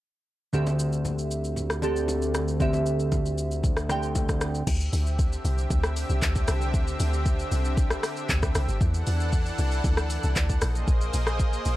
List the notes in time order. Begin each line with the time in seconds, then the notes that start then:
0.53 D2 D3 C4 G4 E5, low conga, shaker
0.67 low bongo, shaker
0.79 shaker
0.93 shaker
1.05 high bongo, low conga, shaker
1.19 shaker
1.31 shaker
1.44 shaker
1.56 low conga, shaker
1.70 cross-stick, shaker
1.82 D3 C4 G4 A4, high bongo, low bongo, shaker
1.96 shaker
2.08 high bongo, shaker
2.22 shaker
2.34 cross-stick, shaker
2.48 shaker
2.60 D3 C4 G4 E5, kick, low conga, shaker
2.73 low bongo, shaker
2.86 shaker
3.00 shaker
3.12 kick, high bongo, low conga, shaker
3.26 shaker
3.38 shaker
3.51 shaker
3.63 kick, low conga, shaker
3.77 cross-stick, shaker
3.89 D3 C4 G4 G5, cross-stick, high bongo, low bongo, shaker
4.03 shaker
4.15 kick, high bongo, shaker
4.29 kick, cross-stick, shaker
4.41 cross-stick, shaker
4.55 shaker
4.67 D2 D3 C4 G4 E5, kick, crash, shaker
4.81 shaker
4.93 D2, open hi-hat, shaker
5.06 shaker
5.19 kick, shaker
5.33 shaker
5.45 C2, open hi-hat, shaker
5.58 shaker
5.71 D2, kick, shaker
5.84 cross-stick, shaker
5.96 open hi-hat, shaker
6.09 C2, shaker
6.22 D2, kick, clap, shaker
6.35 kick, shaker
6.48 C2, cross-stick, open hi-hat, shaker
6.61 shaker
6.74 D2, kick, shaker
6.87 shaker
7.00 D2, open hi-hat, shaker
7.13 shaker
7.26 kick, shaker
7.39 shaker
7.52 C2, open hi-hat, shaker
7.65 shaker
7.77 kick, shaker
7.90 cross-stick, shaker
8.03 cross-stick, open hi-hat, shaker
8.17 shaker
8.29 D2, kick, clap, shaker
8.43 kick, cross-stick, shaker
8.55 C2, cross-stick, open hi-hat, shaker
8.69 G1, shaker
8.81 E2 E3 D4 A4 F#5, kick, shaker
8.94 shaker
9.07 E2, open hi-hat, shaker
9.20 shaker
9.32 kick, shaker
9.46 shaker
9.58 C2, open hi-hat, shaker
9.72 shaker
9.84 D2, kick, shaker
9.97 cross-stick, shaker
10.10 open hi-hat, shaker
10.23 C2, shaker
10.36 D2, kick, clap, shaker
10.49 kick, shaker
10.61 A#1 A#3 G#4 C5 D#5, cross-stick, open hi-hat, shaker
10.75 shaker
10.88 A#1, kick, shaker
11.01 shaker
11.13 A#1, open hi-hat, shaker
11.27 cross-stick, shaker
11.39 kick, shaker
11.53 shaker
11.65 A#1, open hi-hat, shaker